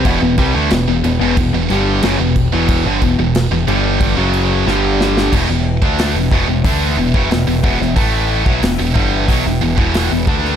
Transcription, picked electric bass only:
X:1
M:4/4
L:1/16
Q:1/4=91
K:Em
V:1 name="Picked electric bass" clef=bass
E,,, E,,, C,, D,, E,,, E,,, E,,, E,,, E,,, E,,, G,,,2 F,,, E,,,2 E,,,- | E,,, G,,, E,,, E,,,2 E,,, G,,,3 F,,,3 G,,,4 | E,,, E,,,2 D,,2 E,,, E,,, E,,, D,,2 E,,, F,,, E,,, E,,, E,,, E,,, | A,,,3 B,,, E,,, E,,, G,,,2 B,,, E,,, E,,, E,,,2 E,,, D,,2 |]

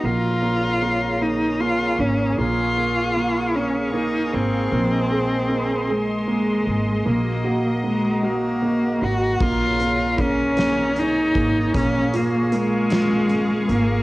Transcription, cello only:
X:1
M:6/8
L:1/8
Q:3/8=51
K:Bbm
V:1 name="Cello"
F3 E F D | F3 D E C- | C3 A,3 | B,2 A, B,2 G |
F2 D2 E2 | D B, A,3 B, |]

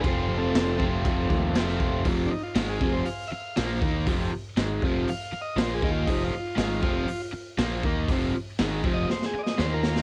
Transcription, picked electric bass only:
X:1
M:4/4
L:1/8
Q:1/4=119
K:Cdor
V:1 name="Picked electric bass" clef=bass
F,,, F,,, F,,, F,,, F,,, E,, F,,, F,,, | F,,, z _A,,, F,,, z2 B,,, E,, | F,,, z _A,,, F,,, z2 B,,, E,, | F,,, z _A,,, F,,, z2 B,,, E,, |
F,,, z _A,,, F,,, z2 E,,2 |]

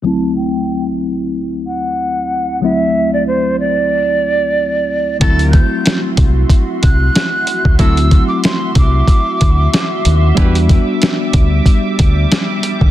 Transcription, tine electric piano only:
X:1
M:4/4
L:1/8
Q:"Swing 16ths" 1/4=93
K:Dmix
V:1 name="Tine electric piano"
[D,,F,A,CE]8 | [D,,F,A,CE]8 | [=F,^F,A,CE]8 | [F,A,CE]8 |
[G,B,DEF]8 |]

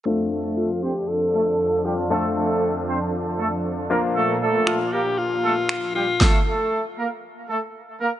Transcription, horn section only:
X:1
M:4/4
L:1/16
Q:1/4=117
K:F
V:1 name="Horn section"
[A,A]2 [A,A]3 z [Cc] z3 [A,A] z3 [G,G] z | [A,A]2 [A,A]3 z [Cc] z3 [A,A] z3 [B,B] z | [A,A]2 [A,A]3 z [B,B] z3 [A,A] z3 [G,G] z | [A,A]2 [A,A]3 z [B,B] z3 [A,A] z3 [B,B] z |]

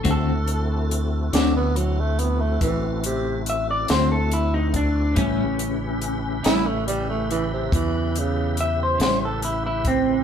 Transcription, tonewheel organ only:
X:1
M:12/8
L:1/8
Q:3/8=47
K:Amix
V:1 name="Tonewheel organ"
[A,=CEF]12 | [C,EGB]12 |]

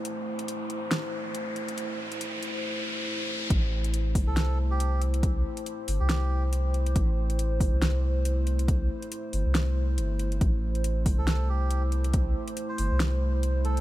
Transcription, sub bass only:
X:1
M:4/4
L:1/16
Q:"Swing 16ths" 1/4=139
K:Am
V:1 name="Sub bass" clef=bass
z16 | z16 | A,,,6 G,,, C,,8- C,,- | C,,2 z4 G,,, C,,8- C,, |
A,,,6 G,,, C,,8- C,,- | C,,2 z4 G,,, C,,4- C,, G,,,4 | A,,,6 G,,, C,,8- C,,- | C,,2 z4 G,,, C,,8- C,, |]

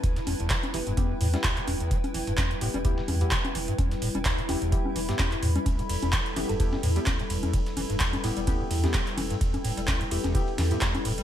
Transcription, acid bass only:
X:1
M:4/4
L:1/16
Q:"Swing 16ths" 1/4=128
K:Em
V:1 name="Acid bass" clef=bass
D,, E, E,, E,, G, z E, G,, E,, G,, A,, G, D,, E, E,, E,, | G, z E, G,, E,, G,, A,, G, D,, E, E,, E,, G, z E, G,, | E,, G,, A,, G, D,, E, E,, E,, G, z E, G,, E,, G,, A,, G, | D,, E, E,, E,, G, z E, G,, E,, G,, A,, G, D,, E, E,, E,, |
G, z E, G,, E,, G,, A,, G, D,, E, E,, E,, G, z E, G,, | E,, G,, A,, G, D,, E, E,, E,, G, z E, G,, E,, G,, A,, G, |]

